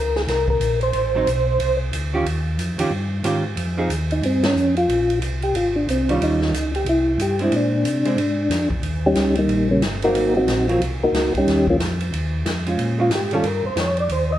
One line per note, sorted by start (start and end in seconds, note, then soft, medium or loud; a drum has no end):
0.00 0.27 C#2 medium
0.00 0.17 A#4 medium
0.16 0.22 G#4 medium
0.16 snare soft
0.28 0.60 C2 medium
0.28 0.48 A#4 loud
0.28 snare soft
0.28 ride medium
0.48 0.80 A#4 medium
0.48 kick medium
0.60 0.92 A#1 medium
0.60 hi-hat pedal medium
0.60 ride medium
0.81 1.77 C5 loud
0.81 ride soft
0.93 1.25 A1 medium
0.93 ride medium
1.15 1.26 F#3 medium
1.15 1.26 C4 medium
1.15 1.27 D#4 medium
1.27 1.59 B1 medium
1.27 hi-hat pedal medium
1.27 ride medium
1.59 1.91 C2 medium
1.59 ride medium
1.92 2.24 D2 medium
1.92 hi-hat pedal medium
1.92 ride medium
2.13 2.24 D#3 medium
2.13 2.25 C#4 medium
2.13 2.25 F4 medium
2.13 2.25 G4 medium
2.25 2.57 D#2 medium
2.25 ride medium
2.57 2.77 F2 medium
2.57 hi-hat pedal medium
2.57 ride medium
2.78 2.85 F2 soft
2.78 2.90 D#3 medium
2.78 2.90 C#4 medium
2.78 2.90 F4 medium
2.78 2.91 G4 medium
2.78 ride medium
2.91 3.23 G2 medium
3.23 3.56 G#2 medium
3.23 3.42 D#3 medium
3.23 3.43 C#4 medium
3.23 3.43 F4 medium
3.23 3.43 G4 medium
3.23 hi-hat pedal medium
3.23 ride medium
3.56 3.88 F2 medium
3.56 ride medium
3.77 3.89 F3 medium
3.77 3.89 C4 medium
3.77 3.89 D#4 medium
3.77 3.90 G#4 medium
3.89 4.21 D#2 medium
3.89 hi-hat pedal medium
3.89 ride medium
4.11 4.24 D#4 medium
4.11 ride soft
4.22 4.54 G2 medium
4.22 4.45 C4 medium
4.22 ride medium
4.43 4.75 C#4 loud
4.43 snare medium
4.43 ride medium
4.55 4.87 F2 medium
4.55 hi-hat pedal soft
4.77 5.19 F4 loud
4.77 ride soft
4.88 5.20 A#1 medium
4.88 ride medium
5.10 ride soft
5.21 5.53 C2 medium
5.21 hi-hat pedal medium
5.21 ride medium
5.42 5.56 G4 loud
5.42 ride soft
5.55 5.87 G#1 medium
5.55 5.76 F4 loud
5.55 ride medium
5.76 5.88 D4 medium
5.87 6.19 C2 medium
5.87 6.10 C4 medium
5.87 hi-hat pedal medium
5.87 ride medium
6.09 6.51 D#3 medium
6.09 6.52 G3 medium
6.09 6.52 C#4 medium
6.09 6.16 D4 medium
6.09 6.52 F4 medium
6.09 ride soft
6.20 6.52 D#2 medium
6.20 6.71 D#4 loud
6.20 ride medium
6.42 snare soft
6.52 6.85 C#2 medium
6.52 hi-hat pedal medium
6.52 ride medium
6.75 6.88 G4 medium
6.75 ride soft
6.86 7.18 C2 medium
6.86 7.22 E4 medium
6.86 ride medium
7.18 7.50 G2 medium
7.18 7.41 G4 medium
7.18 hi-hat pedal medium
7.18 ride medium
7.39 7.83 G#3 medium
7.39 7.83 C4 medium
7.39 7.83 D4 medium
7.39 ride soft
7.44 7.54 E4 medium
7.52 7.84 A#2 medium
7.52 ride medium
7.56 8.69 D4 medium
7.84 8.16 C3 medium
7.84 hi-hat pedal medium
7.84 ride medium
8.05 8.17 G#3 medium
8.05 8.17 C4 medium
8.05 8.17 D4 medium
8.05 ride soft
8.17 8.49 G#2 medium
8.17 ride medium
8.49 8.69 F2 medium
8.49 snare soft
8.49 hi-hat pedal soft
8.49 ride medium
8.70 8.77 F2 soft
8.70 kick medium
8.82 9.15 D#2 medium
8.82 ride medium
9.06 9.36 G3 medium
9.06 9.36 C#4 medium
9.06 9.36 D#4 medium
9.06 9.36 G4 medium
9.15 9.48 C#2 medium
9.15 snare medium
9.15 hi-hat pedal soft
9.15 ride medium
9.35 9.68 D#3 medium
9.35 9.68 G3 medium
9.35 9.68 A#3 medium
9.35 9.68 D#4 medium
9.35 ride soft
9.48 9.80 A#1 medium
9.48 ride medium
9.71 9.83 C#3 medium
9.71 9.83 G3 medium
9.71 9.83 A#3 medium
9.71 9.82 C#4 medium
9.81 10.13 G1 medium
9.81 snare medium
9.81 hi-hat pedal medium
9.81 ride medium
10.02 10.46 F#3 medium
10.02 10.46 A#3 medium
10.02 10.34 A#3 medium
10.02 10.47 C4 medium
10.02 10.34 D#4 medium
10.02 10.34 F#4 medium
10.02 10.34 A#4 medium
10.02 ride soft
10.13 10.46 G#1 medium
10.13 ride medium
10.37 10.67 F#3 medium
10.37 10.67 C4 medium
10.37 10.67 D#4 medium
10.37 10.67 F#4 medium
10.46 10.79 A#1 medium
10.46 snare medium
10.46 hi-hat pedal soft
10.46 ride medium
10.69 10.81 F3 medium
10.69 10.80 F#3 medium
10.69 10.81 A#3 medium
10.69 10.81 C4 medium
10.69 10.81 F4 medium
10.69 ride soft
10.81 10.99 C2 medium
10.81 ride medium
11.01 11.07 C2 soft
11.01 11.33 A#3 medium
11.01 11.33 D#4 medium
11.01 11.33 F#4 medium
11.01 11.33 A#4 loud
11.12 11.32 C#2 medium
11.12 snare medium
11.12 hi-hat pedal medium
11.12 ride medium
11.34 11.40 C#2 soft
11.34 11.67 G3 medium
11.34 11.67 C#4 medium
11.34 11.67 D#4 medium
11.34 11.66 G4 medium
11.34 kick soft
11.34 ride soft
11.46 11.78 D#2 medium
11.46 snare soft
11.46 ride medium
11.67 11.77 F3 medium
11.67 11.77 A#3 medium
11.67 11.77 C#4 medium
11.67 11.77 F4 medium
11.67 kick soft
11.79 12.11 F2 medium
11.79 snare medium
11.79 hi-hat pedal medium
11.79 ride medium
12.01 ride soft
12.13 12.44 D#2 medium
12.13 ride medium
12.45 12.77 F2 medium
12.45 snare medium
12.45 hi-hat pedal soft
12.45 ride medium
12.66 12.97 G#3 soft
12.66 12.98 C#4 soft
12.66 12.99 F4 medium
12.66 ride soft
12.78 13.10 A#2 medium
12.78 ride medium
12.99 13.10 G#3 medium
12.99 13.10 C#4 medium
12.99 13.11 F4 medium
12.99 13.12 F4 medium
13.10 13.42 G#2 medium
13.10 snare medium
13.10 hi-hat pedal soft
13.10 ride medium
13.15 13.33 G4 medium
13.31 13.43 D#3 medium
13.31 13.44 G3 medium
13.31 13.44 C#4 medium
13.31 13.44 F4 medium
13.31 13.45 A4 medium
13.31 ride soft
13.44 13.63 G2 medium
13.44 13.65 A#4 medium
13.44 ride medium
13.64 13.70 G2 soft
13.64 13.77 C5 medium
13.76 14.08 F2 medium
13.76 snare medium
13.76 hi-hat pedal medium
13.76 ride medium
13.80 13.98 C#5 medium
13.97 14.11 D5 loud
13.97 ride soft
14.09 14.39 D#2 medium
14.09 14.31 C5 medium
14.09 ride medium
14.32 14.39 D#5 loud